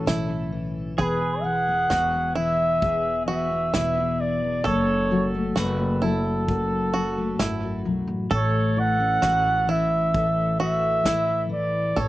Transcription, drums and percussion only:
0.07 kick, snare
0.99 kick
1.91 kick, snare
2.82 kick
3.74 kick, snare
4.65 kick
5.57 kick, snare
6.48 kick
7.40 kick, snare
8.31 kick
9.23 kick, snare
10.14 kick
11.05 kick, snare
11.97 kick

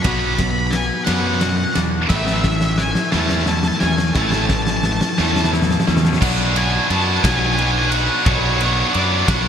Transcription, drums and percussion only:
0.04 kick, snare, ride
0.38 kick, snare, ride
0.73 snare, ride
1.07 snare, ride
1.41 snare, ride
1.75 snare, ride
2.10 kick, snare, crash
2.27 snare
2.44 kick, snare
2.61 snare
2.78 snare
2.95 snare
3.12 snare
3.29 snare
3.46 snare
3.63 snare
3.80 snare
3.98 snare
4.15 kick, snare
4.32 snare
4.49 kick, snare
4.67 snare
4.83 snare
5.01 snare
5.18 snare
5.36 snare
5.44 snare
5.53 snare
5.62 snare
5.71 snare
5.80 snare
5.88 snare
5.97 snare
6.05 snare
6.13 snare
6.22 kick, crash
6.56 ride
6.90 ride
7.24 kick, snare, ride
7.58 ride
7.92 ride
8.26 kick, ride
8.61 ride
8.94 ride
9.28 kick, snare, ride

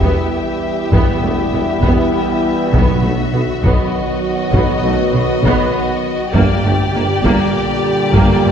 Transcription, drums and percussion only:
0.01 taiko
0.92 taiko
1.83 taiko
2.74 taiko
3.64 taiko
4.54 taiko
5.44 taiko
6.34 taiko
7.25 taiko
8.15 taiko

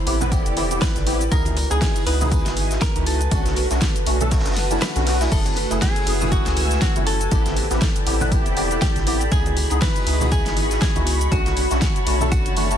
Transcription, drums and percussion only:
0.07 open hi-hat, tambourine
0.21 high conga, low conga, shaker
0.32 kick, closed hi-hat, tambourine, shaker
0.46 closed hi-hat, shaker
0.57 open hi-hat, tambourine, high conga
0.71 closed hi-hat, shaker
0.82 kick, snare, closed hi-hat, tambourine, shaker
0.96 snare, closed hi-hat, high conga, shaker
1.07 open hi-hat, tambourine
1.21 closed hi-hat, shaker
1.32 kick, closed hi-hat, tambourine, shaker
1.45 closed hi-hat, high conga, shaker
1.57 open hi-hat, tambourine
1.71 closed hi-hat, shaker
1.81 kick, snare, closed hi-hat, open hi-hat, high conga, shaker
1.96 closed hi-hat, shaker
2.07 open hi-hat, tambourine
2.21 high conga, low conga, shaker
2.32 kick, closed hi-hat, tambourine, shaker
2.46 snare, closed hi-hat, shaker
2.56 open hi-hat, tambourine, high conga
2.71 snare, closed hi-hat, shaker
2.81 kick, snare, closed hi-hat, tambourine, shaker
2.96 closed hi-hat, high conga, shaker
3.06 open hi-hat, tambourine
3.21 closed hi-hat, shaker
3.31 kick, closed hi-hat, tambourine, shaker
3.45 snare, closed hi-hat, high conga, shaker
3.56 open hi-hat, tambourine
3.71 snare, closed hi-hat, shaker
3.81 kick, snare, closed hi-hat, tambourine, high conga, shaker
3.96 closed hi-hat, shaker
4.06 open hi-hat, tambourine
4.21 closed hi-hat, high conga, low conga, shaker
4.31 kick, snare, closed hi-hat, open hi-hat, shaker
4.39 snare, open hi-hat
4.45 snare, closed hi-hat, open hi-hat, shaker
4.51 snare, open hi-hat
4.56 snare, open hi-hat, tambourine, high conga
4.71 closed hi-hat, shaker
4.81 snare, closed hi-hat, tambourine, shaker
4.96 snare, closed hi-hat, high conga, shaker
5.07 snare, open hi-hat
5.21 snare, closed hi-hat, open hi-hat, shaker
5.32 kick, closed hi-hat, crash, tambourine, shaker
5.45 closed hi-hat, high conga, shaker
5.56 open hi-hat, tambourine
5.71 closed hi-hat, shaker
5.82 kick, snare, closed hi-hat, open hi-hat, high conga, shaker
5.96 closed hi-hat, shaker
6.07 open hi-hat, tambourine
6.21 high conga, low conga, shaker
6.32 kick, closed hi-hat, tambourine, shaker
6.46 snare, closed hi-hat, shaker
6.57 open hi-hat, tambourine, high conga
6.71 snare, closed hi-hat, shaker
6.81 kick, snare, closed hi-hat, tambourine, shaker
6.96 closed hi-hat, high conga, shaker
7.07 open hi-hat, tambourine
7.21 closed hi-hat, shaker
7.31 kick, closed hi-hat, tambourine, shaker
7.46 snare, closed hi-hat, high conga, shaker
7.57 open hi-hat, tambourine
7.71 snare, closed hi-hat, shaker
7.81 kick, snare, closed hi-hat, tambourine, high conga, shaker
7.96 closed hi-hat, shaker
8.07 open hi-hat, tambourine
8.21 high conga, low conga, shaker
8.32 kick, closed hi-hat, tambourine, shaker
8.46 closed hi-hat, shaker
8.57 open hi-hat, tambourine, high conga
8.71 closed hi-hat, shaker
8.81 kick, snare, closed hi-hat, tambourine, shaker
8.96 snare, closed hi-hat, high conga, shaker
9.07 open hi-hat, tambourine
9.21 closed hi-hat, shaker
9.32 kick, closed hi-hat, tambourine, shaker
9.46 closed hi-hat, high conga, shaker
9.57 open hi-hat, tambourine
9.70 closed hi-hat, shaker
9.82 kick, snare, closed hi-hat, open hi-hat, high conga, shaker
9.96 closed hi-hat, shaker
10.07 open hi-hat, tambourine
10.21 high conga, low conga, shaker
10.32 kick, closed hi-hat, tambourine, shaker
10.46 snare, closed hi-hat, shaker
10.57 open hi-hat, tambourine, high conga
10.71 snare, closed hi-hat, shaker
10.82 kick, snare, closed hi-hat, tambourine, shaker
10.96 closed hi-hat, high conga, shaker
11.07 open hi-hat, tambourine
11.21 closed hi-hat, shaker
11.32 kick, closed hi-hat, tambourine, shaker
11.46 snare, closed hi-hat, high conga, shaker
11.57 open hi-hat, tambourine
11.71 snare, closed hi-hat, shaker
11.81 kick, snare, closed hi-hat, tambourine, high conga, shaker
11.96 closed hi-hat, shaker
12.06 open hi-hat, tambourine
12.20 high conga, low conga, shaker
12.32 kick, closed hi-hat, tambourine, shaker
12.46 closed hi-hat, shaker
12.57 open hi-hat, tambourine, high conga
12.71 closed hi-hat, shaker

